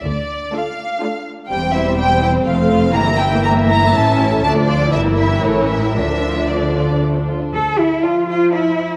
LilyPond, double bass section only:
\new Staff \with { instrumentName = "Double bass section" } { \clef bass \time 3/4 \key d \minor \tempo 4 = 121 d,4 r2 | e,,2 f,,4 | g,,2 a,,4 | d,4 g,,4 a,,4 |
d,2~ d,8 r8 | d,4 r2 | }